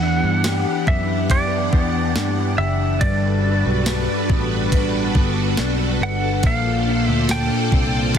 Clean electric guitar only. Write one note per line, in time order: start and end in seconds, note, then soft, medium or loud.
0.00 3.01 E3 medium
0.00 2.15 D4 medium
0.45 1.30 G4 medium
0.87 1.73 B3 medium
1.30 2.58 G4 medium
1.73 4.29 B3 medium
2.15 3.44 D4 medium
2.59 3.86 G4 medium
3.01 6.44 G2 medium
3.44 5.58 D4 medium
3.86 4.72 B4 medium
4.30 5.15 B3 medium
4.73 6.00 B4 medium
5.16 6.53 B3 medium
5.59 6.87 D4 medium
6.01 6.53 B4 medium
6.44 8.18 A#2 medium
6.87 8.18 D4 medium
7.30 8.14 A4 medium
7.73 8.18 C4 medium